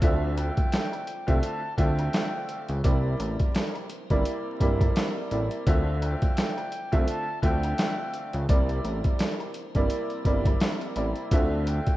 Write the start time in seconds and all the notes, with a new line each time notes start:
0.02 D2 D3 A3 C4 F4 D5 E5, kick, closed hi-hat, shaker
0.37 G5, closed hi-hat, high woodblock, shaker
0.57 kick, closed hi-hat
0.72 snare, closed hi-hat, shaker
0.92 closed hi-hat, high woodblock
1.07 closed hi-hat, shaker
1.27 C2 D3 A3 C4 F4 E5, kick, closed hi-hat
1.43 A5, closed hi-hat, shaker
1.77 D2 D3 A3 C4 F4 E5 G5, kick, closed hi-hat, shaker
1.99 closed hi-hat, high woodblock
2.13 snare, closed hi-hat, shaker
2.49 closed hi-hat, shaker
2.68 C#2, closed hi-hat
2.83 C2 C3 G3 A#3 E4 C5 D5, kick, closed hi-hat, shaker
3.20 A1, closed hi-hat, high woodblock, shaker
3.40 kick, closed hi-hat
3.55 snare, closed hi-hat, shaker
3.74 closed hi-hat, high woodblock
3.90 closed hi-hat, shaker
4.10 G1 C3 G3 A#3 E4 D5, kick, closed hi-hat
4.25 closed hi-hat, shaker
4.60 G1 C3 G3 A#3 E4 D5, kick, closed hi-hat, shaker
4.81 kick, closed hi-hat, high woodblock
4.96 snare, closed hi-hat, shaker
5.31 A1 C3 G3 A#3 E4 D5, closed hi-hat, shaker
5.51 closed hi-hat
5.67 D2 D3 A3 C4 F4 D5 E5, kick, closed hi-hat, shaker
6.02 G5, closed hi-hat, high woodblock, shaker
6.22 kick, closed hi-hat
6.37 snare, closed hi-hat, shaker
6.57 closed hi-hat, high woodblock
6.72 closed hi-hat, shaker
6.92 C2 D3 A3 C4 F4 E5, kick, closed hi-hat
7.07 A5, closed hi-hat, shaker
7.42 D2 D3 A3 C4 F4 E5 G5, kick, closed hi-hat, shaker
7.63 closed hi-hat, high woodblock
7.78 snare, closed hi-hat, shaker
8.14 closed hi-hat, shaker
8.33 C#2, closed hi-hat
8.48 C2 C3 G3 A#3 E4 C5 D5, kick, closed hi-hat, shaker
8.69 closed hi-hat
8.84 A1, closed hi-hat, high woodblock, shaker
9.04 kick, closed hi-hat
9.19 snare, closed hi-hat, shaker
9.39 closed hi-hat, high woodblock
9.54 closed hi-hat, shaker
9.75 G1 C3 G3 A#3 E4 D5, kick, closed hi-hat
9.90 closed hi-hat, shaker
10.10 closed hi-hat
10.25 G1 C3 G3 A#3 E4 D5, kick, closed hi-hat, shaker
10.45 kick, closed hi-hat, high woodblock
10.60 snare, closed hi-hat, shaker
10.81 closed hi-hat
10.96 A1 C3 G3 A#3 E4 D5, closed hi-hat, shaker
11.16 closed hi-hat
11.31 D2 D3 A3 C4 F4 D5 E5, kick, closed hi-hat, shaker
11.67 G5, closed hi-hat, high woodblock, shaker
11.87 kick, closed hi-hat